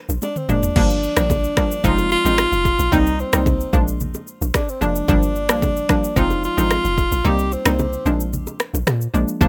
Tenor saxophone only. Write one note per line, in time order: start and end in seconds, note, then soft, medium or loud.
0.23 0.38 D4 medium
0.37 0.51 C4 medium
0.50 1.86 D4 loud
1.85 2.11 F4 loud
2.12 2.95 F4 loud
2.93 3.22 D#4 loud
3.20 4.01 C4 medium
4.55 4.71 D4 medium
4.69 4.82 C4 medium
4.82 6.13 D4 loud
6.17 6.42 F4 loud
6.45 7.28 F4 loud
7.26 7.54 G4 loud
7.53 8.33 C4 medium